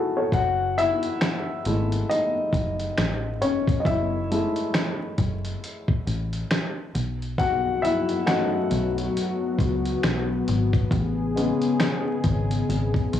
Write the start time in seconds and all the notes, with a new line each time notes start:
Already playing: A3 B3 C#4 E4 F#4 G#4 A4 E5 F#5 C#6
0.17 A4 C#5
0.32 F#1 F#4 F#5, kick, closed hi-hat
0.78 E4 E5, closed hi-hat
1.03 closed hi-hat
1.21 finger snap, snare, closed hi-hat
1.65 G#1 G#3 A3 E4, closed hi-hat
1.92 closed hi-hat
2.09 D#4 D#5, closed hi-hat
2.53 F#1, kick, closed hi-hat
2.80 closed hi-hat
2.98 A1, finger snap, snare, closed hi-hat
3.42 F1 C#4 C#5, closed hi-hat
3.67 kick, closed hi-hat
3.80 D#5
3.85 F#1 E4 E5, kick, closed hi-hat
4.31 G#3 A3 E4, closed hi-hat
4.56 closed hi-hat
4.74 finger snap, snare, closed hi-hat
5.18 F#1, kick, closed hi-hat
5.45 closed hi-hat
5.64 closed hi-hat
5.88 kick
6.07 A1, closed hi-hat
6.33 closed hi-hat
6.51 finger snap, snare, closed hi-hat
6.95 B1, closed hi-hat
7.22 closed hi-hat
7.38 F#3 B3 F#4 F#5, kick, closed hi-hat
7.82 E4 E5, closed hi-hat
8.09 closed hi-hat
8.27 A3 C#4 D#4 F#4 F#5, finger snap, snare, closed hi-hat
8.71 B1, closed hi-hat
8.98 closed hi-hat
9.17 closed hi-hat
9.59 C#2, kick, closed hi-hat
9.85 closed hi-hat
10.03 B1, finger snap, snare, closed hi-hat
10.48 G#1, closed hi-hat
10.73 kick, closed hi-hat
10.91 A1 C#3 G#4, kick, closed hi-hat
11.36 G#3 B3 C#4, closed hi-hat
11.62 closed hi-hat
11.80 finger snap, snare, closed hi-hat
12.24 G#1, kick, closed hi-hat
12.51 closed hi-hat
12.69 G#1, closed hi-hat
12.94 kick, closed hi-hat
13.13 B1, closed hi-hat